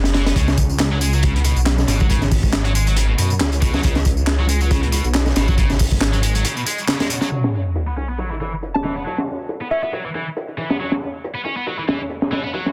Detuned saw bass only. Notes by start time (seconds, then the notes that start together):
Already playing: F#1
0.36 C#2
1.56 B1
1.88 G#1
3.19 F#2
3.40 C#2
3.84 C#2
5.05 B1
5.36 G#1